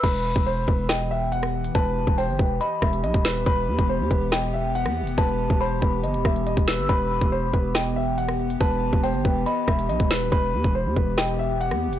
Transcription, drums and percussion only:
0.04 kick loud
0.04 closed hi-hat medium
0.04 crash loud
0.36 kick loud
0.36 closed hi-hat medium
0.68 kick medium
0.68 closed hi-hat medium
0.89 cross-stick loud
0.89 snare loud
0.89 closed hi-hat medium
1.32 closed hi-hat medium
1.43 cross-stick medium
1.64 closed hi-hat medium
1.75 kick loud
1.75 closed hi-hat medium
2.07 kick loud
2.39 kick medium
2.61 closed hi-hat medium
2.82 kick loud
2.82 cross-stick loud
2.93 closed hi-hat medium
3.04 closed hi-hat medium
3.14 kick loud
3.14 closed hi-hat medium
3.25 snare loud
3.25 closed hi-hat medium
3.46 kick loud
3.46 closed hi-hat medium
3.79 kick loud
3.79 closed hi-hat medium
4.11 kick medium
4.11 closed hi-hat medium
4.32 cross-stick loud
4.32 snare loud
4.32 closed hi-hat medium
4.75 closed hi-hat medium
4.86 cross-stick medium
5.07 closed hi-hat medium
5.18 kick loud
5.18 closed hi-hat medium
5.50 kick loud
5.82 kick medium
6.04 closed hi-hat medium
6.14 closed hi-hat medium
6.25 kick loud
6.25 cross-stick loud
6.36 closed hi-hat medium
6.47 closed hi-hat medium
6.57 kick loud
6.57 closed hi-hat medium
6.68 snare loud
6.68 closed hi-hat medium
6.89 kick loud
6.89 closed hi-hat medium
7.21 kick loud
7.21 closed hi-hat medium
7.54 kick medium
7.54 closed hi-hat medium
7.75 cross-stick medium
7.75 snare loud
7.75 closed hi-hat medium
8.18 closed hi-hat medium
8.29 cross-stick medium
8.50 closed hi-hat medium
8.61 kick loud
8.61 closed hi-hat medium
8.93 kick loud
9.25 kick medium
9.46 closed hi-hat medium
9.68 kick loud
9.68 cross-stick loud
9.79 closed hi-hat medium
9.90 closed hi-hat medium
10.00 kick loud
10.00 closed hi-hat medium
10.11 snare loud
10.11 closed hi-hat medium
10.32 kick loud
10.32 closed hi-hat medium
10.64 kick loud
10.64 closed hi-hat medium
10.96 kick medium
10.96 closed hi-hat medium
11.18 cross-stick loud
11.18 snare loud
11.18 closed hi-hat medium
11.61 closed hi-hat medium
11.71 cross-stick medium
11.93 closed hi-hat medium

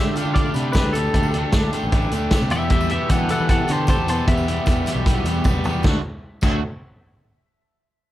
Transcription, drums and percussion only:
0.16 closed hi-hat medium
0.16 tambourine medium
0.25 tambourine soft
0.36 kick loud
0.36 closed hi-hat medium
0.36 tambourine soft
0.45 tambourine soft
0.54 closed hi-hat medium
0.54 tambourine medium
0.73 kick loud
0.73 snare loud
0.73 closed hi-hat medium
0.73 tambourine loud
0.93 closed hi-hat medium
0.93 tambourine medium
1.14 kick loud
1.14 closed hi-hat medium
1.14 tambourine soft
1.23 tambourine medium
1.34 closed hi-hat medium
1.52 kick loud
1.52 snare loud
1.52 closed hi-hat loud
1.52 tambourine loud
1.73 closed hi-hat medium
1.73 tambourine medium
1.92 kick loud
1.92 closed hi-hat medium
1.92 tambourine soft
2.02 tambourine soft
2.11 closed hi-hat medium
2.11 tambourine medium
2.31 kick loud
2.31 snare loud
2.31 closed hi-hat loud
2.31 tambourine loud
2.42 tambourine soft
2.50 closed hi-hat medium
2.50 tambourine medium
2.70 kick loud
2.70 closed hi-hat medium
2.70 tambourine soft
2.81 tambourine medium
2.89 closed hi-hat medium
3.09 kick loud
3.09 closed hi-hat medium
3.09 tambourine medium
3.19 tambourine soft
3.29 closed hi-hat medium
3.29 tambourine medium
3.39 tambourine soft
3.49 kick loud
3.49 closed hi-hat medium
3.49 tambourine soft
3.58 tambourine soft
3.68 closed hi-hat medium
3.68 tambourine medium
3.87 kick loud
3.87 closed hi-hat loud
3.87 tambourine loud
3.97 tambourine soft
4.08 closed hi-hat medium
4.08 tambourine medium
4.27 kick loud
4.27 closed hi-hat medium
4.27 tambourine soft
4.38 tambourine medium
4.48 closed hi-hat medium
4.56 tambourine soft
4.66 kick loud
4.66 closed hi-hat medium
4.66 tambourine loud
4.76 tambourine soft
4.86 closed hi-hat medium
4.86 tambourine medium
4.96 tambourine soft
5.06 kick loud
5.06 closed hi-hat medium
5.06 tambourine soft
5.16 tambourine soft
5.25 closed hi-hat medium
5.25 tambourine medium
5.34 tambourine soft
5.44 kick loud
5.44 high tom medium
5.44 tambourine medium
5.64 floor tom medium
5.64 tambourine medium
5.83 kick loud
5.83 snare medium
5.83 tambourine medium
6.41 kick loud
6.41 crash medium
6.41 tambourine medium

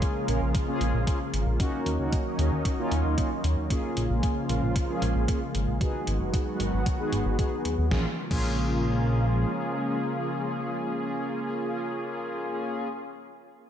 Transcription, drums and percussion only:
0.02 kick loud
0.02 closed hi-hat medium
0.28 closed hi-hat medium
0.55 kick loud
0.55 closed hi-hat medium
0.81 closed hi-hat medium
1.07 kick loud
1.07 closed hi-hat medium
1.34 closed hi-hat medium
1.60 kick loud
1.60 closed hi-hat medium
1.86 closed hi-hat medium
2.12 kick loud
2.12 closed hi-hat medium
2.39 closed hi-hat medium
2.65 kick loud
2.65 closed hi-hat medium
2.92 closed hi-hat medium
3.18 kick loud
3.18 closed hi-hat medium
3.44 closed hi-hat medium
3.70 kick loud
3.70 closed hi-hat medium
3.97 closed hi-hat medium
4.23 kick loud
4.23 closed hi-hat medium
4.49 closed hi-hat medium
4.76 kick loud
4.76 closed hi-hat medium
5.02 closed hi-hat medium
5.28 kick loud
5.28 closed hi-hat medium
5.55 closed hi-hat medium
5.81 kick loud
5.81 closed hi-hat medium
6.07 closed hi-hat medium
6.34 kick loud
6.34 closed hi-hat medium
6.60 closed hi-hat medium
6.86 kick loud
6.86 closed hi-hat medium
7.13 closed hi-hat medium
7.39 kick loud
7.39 closed hi-hat medium
7.65 closed hi-hat medium
7.91 kick loud
7.91 snare medium
8.31 kick loud
8.31 crash medium

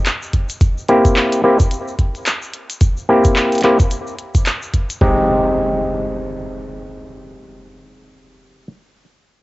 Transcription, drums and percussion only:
0.06 clap loud
0.06 closed hi-hat medium
0.06 shaker medium
0.22 shaker soft
0.33 kick medium
0.33 closed hi-hat medium
0.49 closed hi-hat soft
0.49 shaker medium
0.61 kick loud
0.61 closed hi-hat medium
0.61 shaker medium
0.78 shaker soft
0.89 closed hi-hat soft
1.05 kick loud
1.05 closed hi-hat soft
1.05 shaker medium
1.16 clap loud
1.16 shaker medium
1.32 closed hi-hat medium
1.32 shaker soft
1.60 kick medium
1.60 closed hi-hat soft
1.60 shaker medium
1.71 closed hi-hat medium
1.71 shaker medium
1.88 shaker soft
1.99 kick medium
1.99 closed hi-hat soft
2.15 closed hi-hat soft
2.15 shaker medium
2.26 clap loud
2.26 closed hi-hat medium
2.26 shaker medium
2.42 shaker soft
2.54 closed hi-hat medium
2.70 closed hi-hat medium
2.70 shaker medium
2.81 kick loud
2.81 closed hi-hat medium
2.81 shaker medium
2.97 shaker soft
3.24 kick loud
3.24 closed hi-hat medium
3.24 shaker medium
3.36 clap loud
3.36 shaker medium
3.52 closed hi-hat soft
3.52 shaker soft
3.55 closed hi-hat soft
3.58 closed hi-hat soft
3.61 clap medium
3.61 closed hi-hat medium
3.64 closed hi-hat soft
3.80 kick loud
3.80 closed hi-hat soft
3.80 shaker medium
3.91 closed hi-hat medium
3.91 shaker medium
4.07 shaker soft
4.19 closed hi-hat soft
4.35 kick medium
4.35 closed hi-hat soft
4.35 shaker medium
4.46 clap loud
4.46 closed hi-hat medium
4.46 shaker medium
4.62 shaker soft
4.74 kick medium
4.74 closed hi-hat medium
4.90 closed hi-hat medium
4.90 shaker medium
5.01 kick loud

